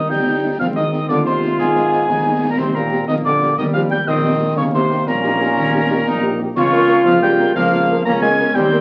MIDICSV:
0, 0, Header, 1, 8, 480
1, 0, Start_track
1, 0, Key_signature, -3, "major"
1, 0, Tempo, 331290
1, 868, Time_signature, 6, 3, 24, 8
1, 12760, End_track
2, 0, Start_track
2, 0, Title_t, "Piccolo"
2, 0, Program_c, 0, 72
2, 142, Note_on_c, 0, 91, 89
2, 814, Note_off_c, 0, 91, 0
2, 858, Note_on_c, 0, 89, 90
2, 945, Note_off_c, 0, 89, 0
2, 1106, Note_on_c, 0, 87, 83
2, 1584, Note_on_c, 0, 86, 87
2, 1606, Note_off_c, 0, 87, 0
2, 1813, Note_off_c, 0, 86, 0
2, 1822, Note_on_c, 0, 84, 90
2, 2305, Note_on_c, 0, 80, 90
2, 2327, Note_off_c, 0, 84, 0
2, 3611, Note_off_c, 0, 80, 0
2, 3620, Note_on_c, 0, 82, 68
2, 3745, Note_on_c, 0, 84, 79
2, 3767, Note_off_c, 0, 82, 0
2, 3982, Note_on_c, 0, 82, 88
2, 4004, Note_off_c, 0, 84, 0
2, 4454, Note_off_c, 0, 82, 0
2, 4463, Note_on_c, 0, 87, 86
2, 4549, Note_off_c, 0, 87, 0
2, 4705, Note_on_c, 0, 86, 89
2, 5153, Note_off_c, 0, 86, 0
2, 5189, Note_on_c, 0, 87, 101
2, 5276, Note_off_c, 0, 87, 0
2, 5423, Note_on_c, 0, 89, 89
2, 5510, Note_off_c, 0, 89, 0
2, 5668, Note_on_c, 0, 91, 96
2, 5908, Note_on_c, 0, 87, 92
2, 5929, Note_off_c, 0, 91, 0
2, 6615, Note_off_c, 0, 87, 0
2, 6623, Note_on_c, 0, 85, 99
2, 6710, Note_off_c, 0, 85, 0
2, 6871, Note_on_c, 0, 84, 90
2, 7316, Note_off_c, 0, 84, 0
2, 7353, Note_on_c, 0, 82, 108
2, 9182, Note_off_c, 0, 82, 0
2, 9503, Note_on_c, 0, 85, 107
2, 10174, Note_off_c, 0, 85, 0
2, 10234, Note_on_c, 0, 89, 107
2, 10454, Note_off_c, 0, 89, 0
2, 10461, Note_on_c, 0, 91, 114
2, 10910, Note_off_c, 0, 91, 0
2, 10952, Note_on_c, 0, 89, 107
2, 11619, Note_off_c, 0, 89, 0
2, 11663, Note_on_c, 0, 94, 113
2, 11750, Note_off_c, 0, 94, 0
2, 11907, Note_on_c, 0, 92, 103
2, 12379, Note_on_c, 0, 91, 112
2, 12401, Note_off_c, 0, 92, 0
2, 12760, Note_off_c, 0, 91, 0
2, 12760, End_track
3, 0, Start_track
3, 0, Title_t, "Cornet"
3, 0, Program_c, 1, 56
3, 0, Note_on_c, 1, 75, 96
3, 146, Note_on_c, 1, 79, 106
3, 168, Note_off_c, 1, 75, 0
3, 858, Note_off_c, 1, 79, 0
3, 866, Note_on_c, 1, 77, 99
3, 975, Note_off_c, 1, 77, 0
3, 1096, Note_on_c, 1, 75, 97
3, 1548, Note_off_c, 1, 75, 0
3, 1580, Note_on_c, 1, 74, 86
3, 1690, Note_off_c, 1, 74, 0
3, 1821, Note_on_c, 1, 72, 92
3, 2271, Note_off_c, 1, 72, 0
3, 2306, Note_on_c, 1, 68, 107
3, 3569, Note_off_c, 1, 68, 0
3, 3634, Note_on_c, 1, 70, 86
3, 3742, Note_on_c, 1, 72, 83
3, 3764, Note_off_c, 1, 70, 0
3, 3966, Note_off_c, 1, 72, 0
3, 3975, Note_on_c, 1, 70, 88
3, 4427, Note_off_c, 1, 70, 0
3, 4457, Note_on_c, 1, 75, 106
3, 4568, Note_off_c, 1, 75, 0
3, 4704, Note_on_c, 1, 74, 92
3, 5152, Note_off_c, 1, 74, 0
3, 5183, Note_on_c, 1, 75, 101
3, 5292, Note_off_c, 1, 75, 0
3, 5411, Note_on_c, 1, 77, 103
3, 5523, Note_off_c, 1, 77, 0
3, 5657, Note_on_c, 1, 79, 99
3, 5768, Note_off_c, 1, 79, 0
3, 5907, Note_on_c, 1, 75, 102
3, 6577, Note_off_c, 1, 75, 0
3, 6628, Note_on_c, 1, 73, 107
3, 6736, Note_off_c, 1, 73, 0
3, 6867, Note_on_c, 1, 72, 94
3, 7352, Note_on_c, 1, 70, 110
3, 7374, Note_off_c, 1, 72, 0
3, 9266, Note_off_c, 1, 70, 0
3, 9512, Note_on_c, 1, 73, 120
3, 10180, Note_off_c, 1, 73, 0
3, 10233, Note_on_c, 1, 77, 110
3, 10340, Note_off_c, 1, 77, 0
3, 10469, Note_on_c, 1, 79, 116
3, 10915, Note_off_c, 1, 79, 0
3, 10949, Note_on_c, 1, 77, 127
3, 11618, Note_off_c, 1, 77, 0
3, 11662, Note_on_c, 1, 82, 119
3, 11888, Note_off_c, 1, 82, 0
3, 11912, Note_on_c, 1, 80, 124
3, 12383, Note_on_c, 1, 79, 122
3, 12405, Note_off_c, 1, 80, 0
3, 12760, Note_off_c, 1, 79, 0
3, 12760, End_track
4, 0, Start_track
4, 0, Title_t, "French horn section"
4, 0, Program_c, 2, 60
4, 384, Note_on_c, 2, 55, 65
4, 384, Note_on_c, 2, 60, 64
4, 385, Note_on_c, 2, 63, 67
4, 471, Note_off_c, 2, 55, 0
4, 471, Note_off_c, 2, 60, 0
4, 472, Note_off_c, 2, 63, 0
4, 627, Note_on_c, 2, 63, 65
4, 628, Note_on_c, 2, 55, 64
4, 628, Note_on_c, 2, 60, 60
4, 713, Note_off_c, 2, 63, 0
4, 714, Note_off_c, 2, 55, 0
4, 714, Note_off_c, 2, 60, 0
4, 1105, Note_on_c, 2, 63, 58
4, 1106, Note_on_c, 2, 60, 59
4, 1108, Note_on_c, 2, 56, 61
4, 1192, Note_off_c, 2, 63, 0
4, 1193, Note_off_c, 2, 60, 0
4, 1194, Note_off_c, 2, 56, 0
4, 1338, Note_on_c, 2, 60, 63
4, 1341, Note_on_c, 2, 56, 60
4, 1341, Note_on_c, 2, 63, 65
4, 1426, Note_off_c, 2, 60, 0
4, 1429, Note_off_c, 2, 56, 0
4, 1429, Note_off_c, 2, 63, 0
4, 1818, Note_on_c, 2, 60, 66
4, 1820, Note_on_c, 2, 63, 67
4, 1823, Note_on_c, 2, 56, 67
4, 1906, Note_off_c, 2, 60, 0
4, 1908, Note_off_c, 2, 63, 0
4, 1910, Note_off_c, 2, 56, 0
4, 2060, Note_on_c, 2, 63, 64
4, 2061, Note_on_c, 2, 60, 62
4, 2064, Note_on_c, 2, 56, 65
4, 2148, Note_off_c, 2, 63, 0
4, 2149, Note_off_c, 2, 60, 0
4, 2151, Note_off_c, 2, 56, 0
4, 2542, Note_on_c, 2, 56, 60
4, 2543, Note_on_c, 2, 60, 63
4, 2543, Note_on_c, 2, 63, 66
4, 2630, Note_off_c, 2, 56, 0
4, 2630, Note_off_c, 2, 63, 0
4, 2631, Note_off_c, 2, 60, 0
4, 2781, Note_on_c, 2, 60, 62
4, 2783, Note_on_c, 2, 56, 71
4, 2783, Note_on_c, 2, 63, 66
4, 2869, Note_off_c, 2, 60, 0
4, 2870, Note_off_c, 2, 63, 0
4, 2871, Note_off_c, 2, 56, 0
4, 3263, Note_on_c, 2, 60, 64
4, 3264, Note_on_c, 2, 56, 61
4, 3264, Note_on_c, 2, 63, 65
4, 3351, Note_off_c, 2, 56, 0
4, 3351, Note_off_c, 2, 60, 0
4, 3352, Note_off_c, 2, 63, 0
4, 3501, Note_on_c, 2, 63, 63
4, 3502, Note_on_c, 2, 56, 66
4, 3503, Note_on_c, 2, 60, 64
4, 3589, Note_off_c, 2, 63, 0
4, 3590, Note_off_c, 2, 56, 0
4, 3591, Note_off_c, 2, 60, 0
4, 3992, Note_on_c, 2, 58, 63
4, 3995, Note_on_c, 2, 67, 63
4, 3996, Note_on_c, 2, 55, 59
4, 4078, Note_off_c, 2, 58, 0
4, 4080, Note_off_c, 2, 55, 0
4, 4080, Note_off_c, 2, 67, 0
4, 4230, Note_on_c, 2, 55, 68
4, 4230, Note_on_c, 2, 58, 68
4, 4230, Note_on_c, 2, 67, 70
4, 4316, Note_off_c, 2, 55, 0
4, 4316, Note_off_c, 2, 58, 0
4, 4316, Note_off_c, 2, 67, 0
4, 4711, Note_on_c, 2, 55, 69
4, 4712, Note_on_c, 2, 67, 65
4, 4713, Note_on_c, 2, 58, 64
4, 4797, Note_off_c, 2, 55, 0
4, 4797, Note_off_c, 2, 67, 0
4, 4798, Note_off_c, 2, 58, 0
4, 4943, Note_on_c, 2, 58, 69
4, 4944, Note_on_c, 2, 55, 68
4, 4944, Note_on_c, 2, 67, 69
4, 5030, Note_off_c, 2, 58, 0
4, 5031, Note_off_c, 2, 55, 0
4, 5031, Note_off_c, 2, 67, 0
4, 5425, Note_on_c, 2, 58, 63
4, 5426, Note_on_c, 2, 67, 68
4, 5428, Note_on_c, 2, 55, 67
4, 5512, Note_off_c, 2, 58, 0
4, 5513, Note_off_c, 2, 67, 0
4, 5514, Note_off_c, 2, 55, 0
4, 5665, Note_on_c, 2, 55, 75
4, 5666, Note_on_c, 2, 58, 70
4, 5667, Note_on_c, 2, 67, 70
4, 5752, Note_off_c, 2, 55, 0
4, 5753, Note_off_c, 2, 58, 0
4, 5753, Note_off_c, 2, 67, 0
4, 6144, Note_on_c, 2, 67, 70
4, 6146, Note_on_c, 2, 58, 70
4, 6149, Note_on_c, 2, 55, 69
4, 6231, Note_off_c, 2, 67, 0
4, 6233, Note_off_c, 2, 58, 0
4, 6235, Note_off_c, 2, 55, 0
4, 6383, Note_on_c, 2, 67, 71
4, 6385, Note_on_c, 2, 58, 69
4, 6386, Note_on_c, 2, 55, 73
4, 6470, Note_off_c, 2, 67, 0
4, 6472, Note_off_c, 2, 58, 0
4, 6473, Note_off_c, 2, 55, 0
4, 6868, Note_on_c, 2, 67, 70
4, 6869, Note_on_c, 2, 58, 67
4, 6870, Note_on_c, 2, 63, 73
4, 6955, Note_off_c, 2, 58, 0
4, 6955, Note_off_c, 2, 67, 0
4, 6956, Note_off_c, 2, 63, 0
4, 7110, Note_on_c, 2, 63, 72
4, 7111, Note_on_c, 2, 58, 69
4, 7112, Note_on_c, 2, 67, 72
4, 7196, Note_off_c, 2, 58, 0
4, 7196, Note_off_c, 2, 63, 0
4, 7197, Note_off_c, 2, 67, 0
4, 7586, Note_on_c, 2, 67, 74
4, 7587, Note_on_c, 2, 58, 71
4, 7587, Note_on_c, 2, 63, 71
4, 7673, Note_off_c, 2, 63, 0
4, 7673, Note_off_c, 2, 67, 0
4, 7674, Note_off_c, 2, 58, 0
4, 7824, Note_on_c, 2, 67, 68
4, 7828, Note_on_c, 2, 58, 68
4, 7829, Note_on_c, 2, 63, 67
4, 7911, Note_off_c, 2, 67, 0
4, 7914, Note_off_c, 2, 58, 0
4, 7915, Note_off_c, 2, 63, 0
4, 8308, Note_on_c, 2, 67, 70
4, 8311, Note_on_c, 2, 58, 77
4, 8311, Note_on_c, 2, 63, 71
4, 8394, Note_off_c, 2, 67, 0
4, 8397, Note_off_c, 2, 58, 0
4, 8397, Note_off_c, 2, 63, 0
4, 8543, Note_on_c, 2, 67, 73
4, 8544, Note_on_c, 2, 58, 75
4, 8544, Note_on_c, 2, 63, 77
4, 8630, Note_off_c, 2, 67, 0
4, 8631, Note_off_c, 2, 58, 0
4, 8631, Note_off_c, 2, 63, 0
4, 9017, Note_on_c, 2, 58, 73
4, 9019, Note_on_c, 2, 67, 74
4, 9021, Note_on_c, 2, 63, 72
4, 9105, Note_off_c, 2, 58, 0
4, 9108, Note_off_c, 2, 67, 0
4, 9109, Note_off_c, 2, 63, 0
4, 9261, Note_on_c, 2, 58, 80
4, 9262, Note_on_c, 2, 67, 77
4, 9263, Note_on_c, 2, 63, 78
4, 9349, Note_off_c, 2, 58, 0
4, 9350, Note_off_c, 2, 63, 0
4, 9350, Note_off_c, 2, 67, 0
4, 9745, Note_on_c, 2, 70, 72
4, 9746, Note_on_c, 2, 58, 69
4, 9746, Note_on_c, 2, 65, 70
4, 9832, Note_off_c, 2, 70, 0
4, 9833, Note_off_c, 2, 58, 0
4, 9833, Note_off_c, 2, 65, 0
4, 9982, Note_on_c, 2, 70, 75
4, 9983, Note_on_c, 2, 58, 81
4, 9984, Note_on_c, 2, 65, 80
4, 10069, Note_off_c, 2, 70, 0
4, 10071, Note_off_c, 2, 58, 0
4, 10071, Note_off_c, 2, 65, 0
4, 10466, Note_on_c, 2, 65, 77
4, 10466, Note_on_c, 2, 70, 77
4, 10467, Note_on_c, 2, 58, 82
4, 10553, Note_off_c, 2, 58, 0
4, 10553, Note_off_c, 2, 65, 0
4, 10553, Note_off_c, 2, 70, 0
4, 10704, Note_on_c, 2, 58, 78
4, 10705, Note_on_c, 2, 70, 75
4, 10709, Note_on_c, 2, 65, 81
4, 10791, Note_off_c, 2, 58, 0
4, 10792, Note_off_c, 2, 70, 0
4, 10795, Note_off_c, 2, 65, 0
4, 11185, Note_on_c, 2, 70, 81
4, 11186, Note_on_c, 2, 65, 76
4, 11188, Note_on_c, 2, 58, 74
4, 11272, Note_off_c, 2, 70, 0
4, 11273, Note_off_c, 2, 65, 0
4, 11274, Note_off_c, 2, 58, 0
4, 11424, Note_on_c, 2, 70, 83
4, 11425, Note_on_c, 2, 58, 82
4, 11427, Note_on_c, 2, 65, 78
4, 11511, Note_off_c, 2, 70, 0
4, 11512, Note_off_c, 2, 58, 0
4, 11514, Note_off_c, 2, 65, 0
4, 11910, Note_on_c, 2, 70, 76
4, 11911, Note_on_c, 2, 58, 84
4, 11911, Note_on_c, 2, 65, 84
4, 11996, Note_off_c, 2, 70, 0
4, 11997, Note_off_c, 2, 58, 0
4, 11997, Note_off_c, 2, 65, 0
4, 12141, Note_on_c, 2, 58, 82
4, 12141, Note_on_c, 2, 70, 80
4, 12142, Note_on_c, 2, 65, 76
4, 12229, Note_off_c, 2, 58, 0
4, 12229, Note_off_c, 2, 70, 0
4, 12230, Note_off_c, 2, 65, 0
4, 12630, Note_on_c, 2, 63, 73
4, 12632, Note_on_c, 2, 58, 75
4, 12634, Note_on_c, 2, 70, 77
4, 12716, Note_off_c, 2, 63, 0
4, 12717, Note_off_c, 2, 58, 0
4, 12719, Note_off_c, 2, 70, 0
4, 12760, End_track
5, 0, Start_track
5, 0, Title_t, "Trombone section"
5, 0, Program_c, 3, 61
5, 0, Note_on_c, 3, 63, 96
5, 866, Note_on_c, 3, 60, 78
5, 871, Note_off_c, 3, 63, 0
5, 1537, Note_off_c, 3, 60, 0
5, 1589, Note_on_c, 3, 65, 100
5, 3028, Note_off_c, 3, 65, 0
5, 3028, Note_on_c, 3, 63, 78
5, 3745, Note_on_c, 3, 60, 86
5, 3748, Note_off_c, 3, 63, 0
5, 4416, Note_off_c, 3, 60, 0
5, 4453, Note_on_c, 3, 58, 73
5, 5180, Note_off_c, 3, 58, 0
5, 5187, Note_on_c, 3, 55, 80
5, 5857, Note_off_c, 3, 55, 0
5, 5897, Note_on_c, 3, 60, 99
5, 6571, Note_off_c, 3, 60, 0
5, 6618, Note_on_c, 3, 58, 81
5, 7343, Note_off_c, 3, 58, 0
5, 7350, Note_on_c, 3, 61, 104
5, 8789, Note_off_c, 3, 61, 0
5, 8795, Note_on_c, 3, 63, 97
5, 9310, Note_off_c, 3, 63, 0
5, 9510, Note_on_c, 3, 65, 115
5, 10890, Note_off_c, 3, 65, 0
5, 10939, Note_on_c, 3, 58, 105
5, 11612, Note_off_c, 3, 58, 0
5, 11670, Note_on_c, 3, 61, 102
5, 12338, Note_off_c, 3, 61, 0
5, 12380, Note_on_c, 3, 60, 109
5, 12760, Note_off_c, 3, 60, 0
5, 12760, End_track
6, 0, Start_track
6, 0, Title_t, "Euphonium"
6, 0, Program_c, 4, 58
6, 0, Note_on_c, 4, 51, 89
6, 147, Note_on_c, 4, 55, 89
6, 169, Note_off_c, 4, 51, 0
6, 857, Note_off_c, 4, 55, 0
6, 866, Note_on_c, 4, 53, 97
6, 974, Note_off_c, 4, 53, 0
6, 1101, Note_on_c, 4, 51, 80
6, 1551, Note_off_c, 4, 51, 0
6, 1578, Note_on_c, 4, 50, 94
6, 1829, Note_on_c, 4, 48, 82
6, 1851, Note_off_c, 4, 50, 0
6, 2297, Note_off_c, 4, 48, 0
6, 2306, Note_on_c, 4, 44, 94
6, 3569, Note_off_c, 4, 44, 0
6, 3623, Note_on_c, 4, 46, 66
6, 3732, Note_off_c, 4, 46, 0
6, 3741, Note_on_c, 4, 48, 88
6, 3967, Note_off_c, 4, 48, 0
6, 3988, Note_on_c, 4, 46, 83
6, 4434, Note_off_c, 4, 46, 0
6, 4462, Note_on_c, 4, 51, 101
6, 4571, Note_off_c, 4, 51, 0
6, 4710, Note_on_c, 4, 50, 88
6, 5155, Note_off_c, 4, 50, 0
6, 5181, Note_on_c, 4, 51, 105
6, 5290, Note_off_c, 4, 51, 0
6, 5425, Note_on_c, 4, 53, 84
6, 5649, Note_off_c, 4, 53, 0
6, 5660, Note_on_c, 4, 55, 92
6, 5769, Note_off_c, 4, 55, 0
6, 5899, Note_on_c, 4, 51, 101
6, 6620, Note_on_c, 4, 49, 106
6, 6642, Note_off_c, 4, 51, 0
6, 6847, Note_off_c, 4, 49, 0
6, 6856, Note_on_c, 4, 48, 90
6, 7308, Note_off_c, 4, 48, 0
6, 7336, Note_on_c, 4, 46, 107
6, 9323, Note_off_c, 4, 46, 0
6, 9502, Note_on_c, 4, 49, 114
6, 10174, Note_off_c, 4, 49, 0
6, 10219, Note_on_c, 4, 53, 118
6, 10446, Note_off_c, 4, 53, 0
6, 10464, Note_on_c, 4, 55, 98
6, 10912, Note_off_c, 4, 55, 0
6, 10942, Note_on_c, 4, 53, 111
6, 11614, Note_off_c, 4, 53, 0
6, 11673, Note_on_c, 4, 58, 127
6, 11779, Note_off_c, 4, 58, 0
6, 11912, Note_on_c, 4, 56, 105
6, 12356, Note_off_c, 4, 56, 0
6, 12391, Note_on_c, 4, 55, 116
6, 12760, Note_off_c, 4, 55, 0
6, 12760, End_track
7, 0, Start_track
7, 0, Title_t, "Tuba"
7, 0, Program_c, 5, 58
7, 144, Note_on_c, 5, 31, 70
7, 746, Note_off_c, 5, 31, 0
7, 869, Note_on_c, 5, 32, 81
7, 1409, Note_off_c, 5, 32, 0
7, 1589, Note_on_c, 5, 39, 75
7, 2188, Note_off_c, 5, 39, 0
7, 2305, Note_on_c, 5, 32, 85
7, 2906, Note_off_c, 5, 32, 0
7, 3022, Note_on_c, 5, 39, 73
7, 3625, Note_off_c, 5, 39, 0
7, 3743, Note_on_c, 5, 39, 81
7, 4345, Note_off_c, 5, 39, 0
7, 4466, Note_on_c, 5, 34, 72
7, 5066, Note_off_c, 5, 34, 0
7, 5183, Note_on_c, 5, 39, 91
7, 5785, Note_off_c, 5, 39, 0
7, 5902, Note_on_c, 5, 34, 78
7, 6505, Note_off_c, 5, 34, 0
7, 6631, Note_on_c, 5, 39, 92
7, 7229, Note_off_c, 5, 39, 0
7, 7353, Note_on_c, 5, 34, 81
7, 7950, Note_off_c, 5, 34, 0
7, 8067, Note_on_c, 5, 39, 93
7, 8667, Note_off_c, 5, 39, 0
7, 8786, Note_on_c, 5, 34, 83
7, 9386, Note_off_c, 5, 34, 0
7, 9507, Note_on_c, 5, 37, 100
7, 10107, Note_off_c, 5, 37, 0
7, 10225, Note_on_c, 5, 37, 95
7, 10826, Note_off_c, 5, 37, 0
7, 10940, Note_on_c, 5, 37, 102
7, 11543, Note_off_c, 5, 37, 0
7, 11671, Note_on_c, 5, 37, 92
7, 12206, Note_off_c, 5, 37, 0
7, 12385, Note_on_c, 5, 39, 102
7, 12760, Note_off_c, 5, 39, 0
7, 12760, End_track
8, 0, Start_track
8, 0, Title_t, "Drums"
8, 154, Note_on_c, 9, 35, 81
8, 154, Note_on_c, 9, 38, 65
8, 299, Note_off_c, 9, 35, 0
8, 299, Note_off_c, 9, 38, 0
8, 875, Note_on_c, 9, 35, 89
8, 875, Note_on_c, 9, 38, 78
8, 1020, Note_off_c, 9, 35, 0
8, 1020, Note_off_c, 9, 38, 0
8, 1109, Note_on_c, 9, 38, 51
8, 1254, Note_off_c, 9, 38, 0
8, 1346, Note_on_c, 9, 38, 55
8, 1491, Note_off_c, 9, 38, 0
8, 1582, Note_on_c, 9, 35, 77
8, 1582, Note_on_c, 9, 38, 83
8, 1727, Note_off_c, 9, 35, 0
8, 1727, Note_off_c, 9, 38, 0
8, 1822, Note_on_c, 9, 38, 57
8, 1967, Note_off_c, 9, 38, 0
8, 2061, Note_on_c, 9, 38, 56
8, 2206, Note_off_c, 9, 38, 0
8, 2303, Note_on_c, 9, 35, 88
8, 2303, Note_on_c, 9, 38, 74
8, 2448, Note_off_c, 9, 35, 0
8, 2448, Note_off_c, 9, 38, 0
8, 2547, Note_on_c, 9, 38, 55
8, 2692, Note_off_c, 9, 38, 0
8, 2784, Note_on_c, 9, 38, 52
8, 2929, Note_off_c, 9, 38, 0
8, 3029, Note_on_c, 9, 35, 84
8, 3029, Note_on_c, 9, 38, 68
8, 3174, Note_off_c, 9, 35, 0
8, 3174, Note_off_c, 9, 38, 0
8, 3748, Note_on_c, 9, 35, 86
8, 3748, Note_on_c, 9, 38, 82
8, 3748, Note_on_c, 9, 49, 33
8, 3893, Note_off_c, 9, 35, 0
8, 3893, Note_off_c, 9, 38, 0
8, 3893, Note_off_c, 9, 49, 0
8, 3987, Note_on_c, 9, 38, 50
8, 4132, Note_off_c, 9, 38, 0
8, 4231, Note_on_c, 9, 38, 52
8, 4376, Note_off_c, 9, 38, 0
8, 4468, Note_on_c, 9, 35, 79
8, 4468, Note_on_c, 9, 38, 85
8, 4613, Note_off_c, 9, 35, 0
8, 4613, Note_off_c, 9, 38, 0
8, 4712, Note_on_c, 9, 38, 52
8, 4857, Note_off_c, 9, 38, 0
8, 4952, Note_on_c, 9, 38, 55
8, 5097, Note_off_c, 9, 38, 0
8, 5187, Note_on_c, 9, 35, 86
8, 5187, Note_on_c, 9, 38, 77
8, 5332, Note_off_c, 9, 35, 0
8, 5332, Note_off_c, 9, 38, 0
8, 5429, Note_on_c, 9, 38, 55
8, 5573, Note_off_c, 9, 38, 0
8, 5666, Note_on_c, 9, 38, 52
8, 5811, Note_off_c, 9, 38, 0
8, 5905, Note_on_c, 9, 35, 83
8, 5905, Note_on_c, 9, 38, 69
8, 6050, Note_off_c, 9, 35, 0
8, 6050, Note_off_c, 9, 38, 0
8, 6627, Note_on_c, 9, 35, 83
8, 6627, Note_on_c, 9, 38, 81
8, 6772, Note_off_c, 9, 35, 0
8, 6772, Note_off_c, 9, 38, 0
8, 6865, Note_on_c, 9, 38, 53
8, 7010, Note_off_c, 9, 38, 0
8, 7108, Note_on_c, 9, 38, 54
8, 7253, Note_off_c, 9, 38, 0
8, 7348, Note_on_c, 9, 35, 84
8, 7348, Note_on_c, 9, 38, 85
8, 7493, Note_off_c, 9, 35, 0
8, 7493, Note_off_c, 9, 38, 0
8, 7588, Note_on_c, 9, 38, 60
8, 7733, Note_off_c, 9, 38, 0
8, 7834, Note_on_c, 9, 38, 60
8, 7979, Note_off_c, 9, 38, 0
8, 8069, Note_on_c, 9, 35, 86
8, 8069, Note_on_c, 9, 38, 72
8, 8214, Note_off_c, 9, 35, 0
8, 8214, Note_off_c, 9, 38, 0
8, 8788, Note_on_c, 9, 35, 87
8, 8788, Note_on_c, 9, 38, 78
8, 8933, Note_off_c, 9, 35, 0
8, 8933, Note_off_c, 9, 38, 0
8, 9510, Note_on_c, 9, 35, 91
8, 9510, Note_on_c, 9, 38, 79
8, 9510, Note_on_c, 9, 49, 53
8, 9654, Note_off_c, 9, 35, 0
8, 9654, Note_off_c, 9, 38, 0
8, 9654, Note_off_c, 9, 49, 0
8, 9751, Note_on_c, 9, 38, 56
8, 9895, Note_off_c, 9, 38, 0
8, 9991, Note_on_c, 9, 38, 57
8, 10136, Note_off_c, 9, 38, 0
8, 10235, Note_on_c, 9, 35, 81
8, 10235, Note_on_c, 9, 38, 80
8, 10380, Note_off_c, 9, 35, 0
8, 10380, Note_off_c, 9, 38, 0
8, 10468, Note_on_c, 9, 38, 57
8, 10613, Note_off_c, 9, 38, 0
8, 10711, Note_on_c, 9, 38, 59
8, 10856, Note_off_c, 9, 38, 0
8, 10949, Note_on_c, 9, 35, 87
8, 10949, Note_on_c, 9, 38, 74
8, 11094, Note_off_c, 9, 35, 0
8, 11094, Note_off_c, 9, 38, 0
8, 11191, Note_on_c, 9, 38, 57
8, 11336, Note_off_c, 9, 38, 0
8, 11425, Note_on_c, 9, 38, 54
8, 11570, Note_off_c, 9, 38, 0
8, 11666, Note_on_c, 9, 35, 82
8, 11666, Note_on_c, 9, 38, 70
8, 11810, Note_off_c, 9, 35, 0
8, 11810, Note_off_c, 9, 38, 0
8, 12391, Note_on_c, 9, 35, 92
8, 12391, Note_on_c, 9, 38, 80
8, 12535, Note_off_c, 9, 35, 0
8, 12535, Note_off_c, 9, 38, 0
8, 12633, Note_on_c, 9, 38, 58
8, 12760, Note_off_c, 9, 38, 0
8, 12760, End_track
0, 0, End_of_file